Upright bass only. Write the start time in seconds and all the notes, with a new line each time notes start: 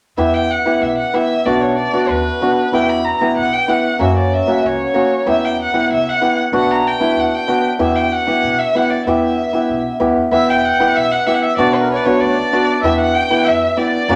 0.17 E2
0.81 B1
1.45 B1
2.09 D#2
2.72 E2
3.36 B1
4.00 F#2
4.63 C#2
5.26 E2
5.89 C2
6.52 B1
7.16 D#2
7.79 E2
8.42 B1
9.06 E2
9.69 B1
10.00 D2
10.16 E2
10.31 E2
10.94 B1
11.57 B1
12.20 D2
12.83 E2
13.46 F2
14.08 F#2